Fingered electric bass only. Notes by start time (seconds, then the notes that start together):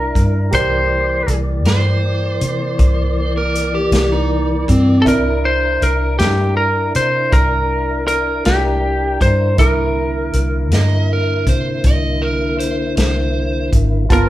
Already playing: C2
0.16 G2
0.52 C2
1.28 C2
1.66 G2
2.42 C3
2.80 C2
3.92 C2
4.68 G2
5.06 C2
5.82 C2
6.20 G2
6.95 C3
7.33 C2
8.46 C2
9.21 G2
9.58 C2
10.34 C2
10.73 G2
11.47 C3
11.84 C2
12.97 C2
13.73 G#1
14.10 G1